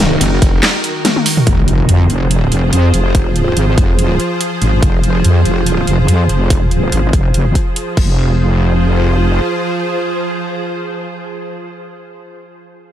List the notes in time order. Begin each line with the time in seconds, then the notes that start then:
Already playing: D#1 D#3 D#4 F#4 A#4
0.21 F#1, closed hi-hat, crash
0.42 F1, kick, closed hi-hat
0.63 snare, clap, closed hi-hat, crash
0.84 closed hi-hat
1.05 snare, closed hi-hat, high tom, crash
1.16 high tom
1.26 open hi-hat
1.37 mid tom
1.47 F1 F3 F4 G#4 C5, kick, closed hi-hat, impact
1.68 closed hi-hat
1.89 F2, closed hi-hat
2.10 F1, closed hi-hat
2.31 closed hi-hat
2.52 F1, closed hi-hat
2.73 F2, closed hi-hat
2.94 F1, closed hi-hat
3.15 kick, closed hi-hat
3.36 closed hi-hat
3.57 G#1, closed hi-hat
3.78 F1, kick, closed hi-hat
3.99 closed hi-hat
4.20 closed hi-hat
4.41 closed hi-hat
4.62 G#1, closed hi-hat
4.83 F1, kick, closed hi-hat
5.04 closed hi-hat
5.24 F2, closed hi-hat
5.45 F1, closed hi-hat
5.66 closed hi-hat
5.87 F1, closed hi-hat
6.08 F2, closed hi-hat
6.29 F1, closed hi-hat
6.50 kick, closed hi-hat
6.71 closed hi-hat
6.92 G#1, closed hi-hat
7.13 F1, kick, closed hi-hat
7.34 F1, closed hi-hat
7.55 kick, closed hi-hat
7.76 closed hi-hat
7.97 F1 F3 F4 G#4 C5, kick, crash